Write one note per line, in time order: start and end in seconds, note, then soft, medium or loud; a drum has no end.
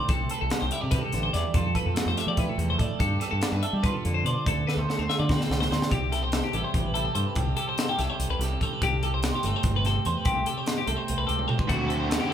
0.00 0.50 A3 medium
0.00 1.57 C4 medium
0.00 0.30 C5 medium
0.08 0.25 C2 medium
0.08 0.91 C3 medium
0.08 0.31 A4 medium
0.08 kick loud
0.08 closed hi-hat medium
0.30 1.75 A4 medium
0.30 0.41 B4 medium
0.30 closed hi-hat medium
0.41 0.50 C2 medium
0.41 0.62 A4 medium
0.50 1.94 G3 medium
0.50 snare loud
0.50 closed hi-hat medium
0.61 0.70 C2 medium
0.61 0.72 C5 medium
0.71 0.81 E4 medium
0.71 0.81 E5 medium
0.71 closed hi-hat medium
0.81 0.99 C3 medium
0.81 1.55 G4 soft
0.81 0.92 D5 medium
0.91 1.13 C3 medium
0.91 1.01 B4 medium
0.91 kick loud
0.91 snare soft
0.91 closed hi-hat medium
1.01 1.23 A4 medium
1.13 1.30 A1 medium
1.13 1.34 D3 medium
1.13 snare soft
1.13 closed hi-hat medium
1.23 1.33 C5 medium
1.33 1.43 E2 medium
1.33 1.54 E3 medium
1.33 1.55 D5 medium
1.33 snare soft
1.33 closed hi-hat medium
1.54 1.71 F2 medium
1.54 3.02 F3 medium
1.54 1.76 A4 medium
1.54 kick loud
1.54 closed hi-hat medium
1.75 2.78 A4 medium
1.75 1.86 B4 medium
1.75 kick medium
1.75 closed hi-hat medium
1.86 1.94 F2 medium
1.86 2.07 A4 medium
1.95 2.99 A3 medium
1.95 snare loud
1.95 closed hi-hat medium
2.05 2.14 F2 medium
2.05 2.18 C5 medium
2.17 2.98 G4 medium
2.17 2.28 E5 medium
2.17 snare soft
2.17 closed hi-hat medium
2.27 2.44 F3 medium
2.27 2.39 D5 medium
2.37 2.98 E4 medium
2.37 2.49 B4 medium
2.37 kick loud
2.37 closed hi-hat medium
2.49 2.70 A4 medium
2.58 2.75 E2 medium
2.58 2.98 C3 medium
2.58 closed hi-hat medium
2.70 2.80 C5 medium
2.78 2.88 A2 medium
2.78 3.22 A4 medium
2.78 3.01 D5 medium
2.78 kick medium
2.78 closed hi-hat medium
2.99 3.17 G2 loud
2.99 4.46 G3 medium
2.99 3.20 A4 medium
2.99 kick loud
2.99 closed hi-hat medium
3.20 3.64 A4 medium
3.20 3.31 B4 medium
3.20 snare soft
3.20 closed hi-hat medium
3.31 3.40 G2 medium
3.31 3.52 A4 medium
3.42 4.44 D4 medium
3.42 snare loud
3.42 closed hi-hat medium
3.52 3.60 G2 medium
3.52 3.63 B4 medium
3.63 4.26 A4 medium
3.63 3.74 E5 medium
3.63 closed hi-hat medium
3.73 3.90 G3 medium
3.73 3.84 D5 medium
3.83 4.45 F4 medium
3.83 3.94 B4 medium
3.83 kick loud
3.83 closed hi-hat medium
3.94 4.14 A4 medium
4.05 4.21 F2 medium
4.05 4.46 D3 medium
4.05 closed hi-hat medium
4.14 4.25 C5 medium
4.24 4.33 B2 medium
4.24 4.44 C5 medium
4.24 4.47 D5 medium
4.24 closed hi-hat medium
4.46 4.62 D2 medium
4.46 5.92 D3 medium
4.46 4.67 A4 medium
4.46 kick loud
4.46 closed hi-hat medium
4.67 4.79 A4 medium
4.67 4.78 B4 medium
4.67 snare medium
4.76 4.85 D2 medium
4.76 4.99 A4 medium
4.76 5.70 C5 soft
4.89 5.90 A3 medium
4.89 snare medium
4.99 5.07 D2 medium
4.99 5.09 C5 medium
5.09 5.89 F4 medium
5.09 5.19 E5 medium
5.09 snare medium
5.19 5.36 D3 medium
5.19 5.31 D5 medium
5.29 6.55 C4 medium
5.29 5.40 B4 medium
5.29 kick loud
5.29 snare medium
5.40 5.60 A4 medium
5.40 snare medium
5.50 5.66 C2 medium
5.50 5.90 A2 medium
5.50 snare medium
5.61 5.71 C5 medium
5.61 snare medium
5.70 5.79 D2 medium
5.70 5.89 C5 medium
5.70 5.92 D5 medium
5.70 snare medium
5.82 snare medium
5.90 6.41 C2 medium
5.90 6.95 C3 medium
5.90 6.13 G4 medium
5.90 kick loud
5.90 closed hi-hat medium
6.12 6.23 E4 medium
6.12 6.23 A4 medium
6.12 snare soft
6.12 closed hi-hat medium
6.23 6.94 G4 soft
6.23 6.44 C5 medium
6.32 7.15 A4 medium
6.32 snare loud
6.32 closed hi-hat medium
6.44 6.54 G4 medium
6.53 6.62 A1 medium
6.53 7.98 G3 medium
6.53 6.94 E4 medium
6.53 6.64 A4 medium
6.53 closed hi-hat medium
6.64 6.84 C5 medium
6.74 7.07 A1 medium
6.74 kick loud
6.74 closed hi-hat medium
6.84 6.94 B4 medium
6.94 7.35 C3 medium
6.94 7.05 E4 medium
6.94 7.14 A4 medium
6.94 closed hi-hat medium
7.05 7.36 G4 soft
7.15 7.24 G2 medium
7.15 7.78 A4 medium
7.15 7.26 C5 medium
7.15 closed hi-hat medium
7.26 7.37 B4 medium
7.36 7.53 C2 medium
7.36 8.40 C3 medium
7.36 7.56 G4 medium
7.36 kick loud
7.36 closed hi-hat medium
7.57 8.41 G4 medium
7.57 7.67 A4 medium
7.57 closed hi-hat medium
7.69 7.89 C5 medium
7.78 8.62 A4 medium
7.78 snare loud
7.78 closed hi-hat medium
7.89 7.99 G4 medium
7.98 8.07 C2 medium
7.98 9.44 G3 medium
7.98 9.44 E4 medium
7.98 8.10 A4 medium
7.98 snare soft
7.98 closed hi-hat medium
8.10 8.30 C5 medium
8.19 8.28 C2 medium
8.19 closed hi-hat medium
8.30 8.38 C2 medium
8.30 8.41 B4 medium
8.39 8.56 C2 medium
8.39 8.81 C3 medium
8.39 9.04 G4 medium
8.39 8.63 A4 medium
8.39 snare soft
8.39 closed hi-hat medium
8.61 9.24 A4 medium
8.61 8.73 C5 medium
8.61 kick medium
8.61 closed hi-hat medium
8.73 8.82 B4 medium
8.81 9.31 C2 medium
8.81 9.84 C3 medium
8.81 9.03 G4 medium
8.81 kick loud
8.81 closed hi-hat medium
9.03 9.84 G4 medium
9.03 9.13 A4 medium
9.03 closed hi-hat medium
9.14 9.34 C5 medium
9.23 10.06 C5 medium
9.23 snare loud
9.23 closed hi-hat medium
9.35 9.46 G4 medium
9.43 9.52 G1 medium
9.43 10.51 A3 medium
9.43 10.87 C4 soft
9.43 9.56 A4 medium
9.43 closed hi-hat medium
9.56 9.76 C5 medium
9.63 9.96 G1 loud
9.63 kick loud
9.63 closed hi-hat medium
9.76 9.86 B4 medium
9.85 10.24 C3 medium
9.85 10.24 G4 soft
9.85 10.06 A4 medium
9.85 snare soft
9.85 closed hi-hat medium
10.05 10.14 E2 medium
10.05 10.17 C5 medium
10.05 10.66 C5 medium
10.05 closed hi-hat medium
10.17 10.27 B4 medium
10.25 10.42 C2 medium
10.25 11.26 C3 medium
10.25 10.46 G4 medium
10.25 kick loud
10.25 closed hi-hat medium
10.46 11.27 G4 medium
10.46 10.58 A4 medium
10.46 closed hi-hat medium
10.58 10.78 C5 medium
10.66 11.48 C5 medium
10.66 snare loud
10.66 closed hi-hat medium
10.78 10.88 G4 medium
10.87 10.96 C2 medium
10.87 12.30 A3 medium
10.87 12.30 C4 medium
10.87 10.97 A4 medium
10.87 closed hi-hat medium
10.97 11.17 C5 medium
11.08 11.17 C2 medium
11.08 closed hi-hat medium
11.18 11.26 C2 medium
11.18 11.26 B4 medium
11.27 11.45 C#2 medium
11.27 11.67 C3 medium
11.27 11.67 G4 medium
11.27 11.48 A4 medium
11.27 closed hi-hat medium
11.39 high tom medium
11.48 11.58 A4 medium
11.48 11.60 C5 medium
11.48 mid tom medium
11.58 11.70 B4 medium
11.58 11.69 C5 soft
11.58 kick loud
11.67 12.18 D2 medium
11.67 12.34 D3 medium
11.67 12.08 D3 medium
11.67 12.09 A3 medium
11.67 12.10 C4 loud
11.67 11.90 F#4 medium
11.67 12.11 F#4 loud
11.67 kick medium
11.67 closed hi-hat medium
11.88 12.34 F#4 medium
11.88 11.99 A4 medium
11.88 closed hi-hat medium
12.00 12.21 C5 medium
12.08 12.34 D3 medium
12.08 12.32 A3 medium
12.08 12.31 C4 medium
12.08 12.28 F#4 medium
12.08 12.21 A4 medium
12.08 snare loud
12.08 closed hi-hat loud
12.20 12.31 G4 medium
12.20 12.34 C5 soft
12.30 12.34 A3 medium
12.30 12.34 F#4 medium
12.30 12.34 A4 medium